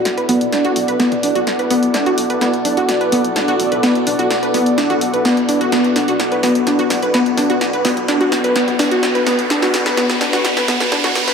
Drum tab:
HH |xxoxxxoxxxoxxxox|xxoxxxoxxxoxxxox|xxoxxxoxxxoxxxox|xxoxxxoxxxoxxxox|
SD |o---o---o---o---|o---o---o---o---|o---o---o---o---|o-o-o-o-o-o-o-o-|
T2 |--o------o------|----------o----o|--o------o------|----------o----o|

HH |xxoxxxoxxxoxxxox|xxoxxxoxxxoxxxox|
SD |o-o-o-o-o-o-o-o-|oooooooooooooooo|
T2 |--o------o------|----------o----o|